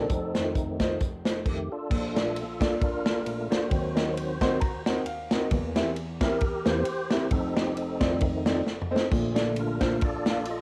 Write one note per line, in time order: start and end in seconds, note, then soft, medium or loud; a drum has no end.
0.00 0.78 C4 medium
0.00 0.78 D#4 soft
0.00 0.33 A4 medium
0.10 1.42 F1 medium
0.10 1.42 F2 medium
0.10 kick medium
0.10 closed hi-hat medium
0.35 0.98 F2 medium
0.35 0.98 D#3 soft
0.35 0.48 A3 medium
0.35 0.48 D#4 medium
0.35 0.48 F4 medium
0.35 0.48 C5 medium
0.35 snare medium
0.35 closed hi-hat medium
0.39 0.99 A3 medium
0.55 kick medium
0.55 closed hi-hat medium
0.80 0.93 A3 medium
0.80 0.93 D#4 medium
0.80 0.93 F4 medium
0.80 0.94 C5 medium
0.80 kick medium
0.80 snare loud
0.80 closed hi-hat medium
1.00 kick loud
1.00 closed hi-hat medium
1.25 1.38 A3 medium
1.25 1.38 D#4 medium
1.25 1.38 F4 medium
1.25 1.39 C5 medium
1.25 snare loud
1.25 closed hi-hat medium
1.46 1.69 F2 soft
1.46 1.69 D#3 soft
1.46 1.70 A3 soft
1.46 1.73 G4 medium
1.46 kick medium
1.46 crash medium
1.72 2.16 D4 medium
1.72 2.78 F4 medium
1.72 2.85 A4 medium
1.90 3.67 A#1 medium
1.90 3.67 A#2 medium
1.90 kick medium
1.90 crash medium
2.15 2.44 A#2 medium
2.15 2.45 A3 soft
2.15 2.28 A#3 medium
2.15 2.28 D4 medium
2.15 2.45 D4 medium
2.15 2.28 F4 medium
2.15 2.28 A4 medium
2.15 2.29 D5 medium
2.15 snare medium
2.15 ride medium
2.36 ride medium
2.60 2.73 A#3 medium
2.60 2.73 D4 medium
2.60 2.73 F4 medium
2.60 2.73 A4 medium
2.60 2.74 D5 loud
2.60 kick medium
2.60 snare loud
2.60 ride medium
2.81 3.26 D4 medium
2.81 3.68 F4 medium
2.81 3.47 A#4 loud
2.81 kick loud
2.81 ride medium
3.05 3.18 A#3 medium
3.05 3.18 D4 medium
3.05 3.18 F4 medium
3.05 3.18 A4 medium
3.05 3.18 D5 medium
3.05 snare loud
3.05 ride medium
3.26 3.49 A#2 soft
3.26 3.49 A3 soft
3.26 3.49 D4 medium
3.26 ride medium
3.50 3.63 A#3 medium
3.50 3.63 D4 medium
3.50 3.63 F4 medium
3.50 4.83 F#4 medium
3.50 3.63 A4 medium
3.50 4.82 C5 medium
3.50 3.64 D5 medium
3.50 snare medium
3.50 ride medium
3.70 5.46 D#2 medium
3.70 5.46 D#3 medium
3.70 4.38 D#3 soft
3.70 4.38 F#3 medium
3.70 4.39 C4 medium
3.70 kick loud
3.70 ride medium
3.95 4.08 C4 medium
3.95 4.08 D#4 medium
3.95 4.08 F#4 medium
3.95 4.08 A#4 medium
3.95 4.08 D#5 medium
3.95 snare loud
3.95 ride medium
4.17 ride medium
4.41 4.60 D#3 medium
4.41 4.60 F#3 soft
4.41 4.54 C4 loud
4.41 4.60 C4 medium
4.41 4.54 D#4 medium
4.41 4.54 F#4 medium
4.41 4.54 A#4 medium
4.41 4.54 C5 loud
4.41 4.60 C6 medium
4.41 kick medium
4.41 snare loud
4.41 ride medium
4.60 4.84 A#5 medium
4.60 kick loud
4.60 ride medium
4.86 4.99 C4 medium
4.86 4.99 D#4 medium
4.86 4.99 F#4 medium
4.86 4.99 A#4 medium
4.86 4.99 C5 medium
4.86 5.05 F#5 medium
4.86 snare loud
4.86 ride medium
5.06 5.29 F5 medium
5.06 ride medium
5.31 5.44 C4 medium
5.31 5.44 D#4 medium
5.31 5.44 F#4 medium
5.31 5.44 A#4 medium
5.31 5.44 D#5 loud
5.31 snare loud
5.31 ride medium
5.51 5.83 E2 medium
5.51 7.28 E2 medium
5.51 7.27 E3 medium
5.51 5.83 E3 medium
5.51 5.83 A#3 medium
5.51 kick loud
5.51 ride medium
5.76 5.88 C4 medium
5.76 5.89 E4 medium
5.76 5.89 G4 medium
5.76 5.89 A#4 medium
5.76 5.89 E5 medium
5.76 snare loud
5.76 ride medium
5.96 ride medium
6.21 6.34 C4 medium
6.21 6.34 E4 medium
6.21 6.35 G4 medium
6.21 6.65 G4 medium
6.21 6.68 A#4 loud
6.21 6.34 A#4 medium
6.21 6.35 E5 medium
6.21 kick medium
6.21 snare loud
6.21 ride medium
6.41 kick loud
6.41 ride medium
6.66 6.84 E2 soft
6.66 6.84 E3 soft
6.66 6.84 A#3 medium
6.66 6.79 C4 medium
6.66 6.79 E4 medium
6.66 7.27 G4 medium
6.66 6.79 G4 medium
6.66 6.79 A#4 medium
6.66 7.10 C5 loud
6.66 6.79 C5 medium
6.66 snare loud
6.66 ride medium
6.85 ride medium
7.11 7.24 C4 medium
7.11 7.24 E4 medium
7.11 7.24 G4 medium
7.11 7.24 A#4 medium
7.11 7.30 C5 loud
7.11 7.24 E5 medium
7.11 snare loud
7.11 ride medium
7.31 9.08 F1 medium
7.31 9.08 F2 medium
7.31 7.75 C4 medium
7.31 7.75 D#4 medium
7.31 7.55 A4 loud
7.31 kick loud
7.31 ride medium
7.56 7.68 C4 medium
7.56 7.68 D#4 medium
7.56 7.69 F4 medium
7.56 7.77 G4 medium
7.56 7.69 A4 medium
7.56 7.69 D#5 medium
7.56 snare loud
7.56 ride medium
7.76 8.62 C4 medium
7.76 8.62 D#4 medium
7.76 8.18 A4 medium
7.76 ride medium
7.99 8.62 F2 medium
7.99 8.63 D#3 medium
7.99 8.63 A3 medium
7.99 8.13 C4 medium
7.99 8.13 D#4 medium
7.99 8.13 F4 medium
7.99 8.14 A4 medium
7.99 8.14 D5 medium
7.99 kick medium
7.99 snare loud
7.99 ride medium
8.21 kick loud
8.21 ride medium
8.46 8.59 C4 medium
8.46 8.59 D#4 medium
8.46 8.59 F4 medium
8.46 8.59 A4 medium
8.46 8.59 D5 medium
8.46 snare loud
8.46 ride medium
8.67 snare medium
8.82 mid tom medium
8.91 9.04 C4 medium
8.91 9.04 D#4 medium
8.91 9.04 F4 medium
8.91 9.04 A4 medium
8.91 9.04 C5 medium
8.96 snare loud
9.12 10.61 A#1 medium
9.12 10.61 A#2 medium
9.12 9.79 A#2 medium
9.12 9.78 D3 medium
9.12 9.79 A3 medium
9.12 kick loud
9.12 splash medium
9.35 9.48 A#3 medium
9.35 9.48 D4 medium
9.35 9.49 F4 medium
9.35 9.48 A4 medium
9.35 9.48 D5 medium
9.35 snare loud
9.35 ride medium
9.56 10.44 D4 medium
9.56 10.03 F4 medium
9.56 ride medium
9.60 10.05 A#4 medium
9.80 10.00 A#2 soft
9.80 10.01 D3 soft
9.80 10.01 A3 medium
9.80 9.94 A#3 medium
9.80 9.94 D4 medium
9.80 9.94 F4 medium
9.80 9.94 A4 medium
9.80 9.94 C5 loud
9.80 kick loud
9.80 snare loud
9.80 ride medium
10.01 10.61 F4 medium
10.01 10.49 A4 medium
10.01 10.49 D5 medium
10.01 kick loud
10.01 ride medium
10.25 10.39 A#3 medium
10.25 10.39 D4 medium
10.25 10.39 F4 medium
10.25 10.39 A4 medium
10.25 10.39 F5 medium
10.25 snare loud
10.25 ride medium
10.45 ride medium
10.50 10.61 A4 medium
10.50 10.61 D#5 loud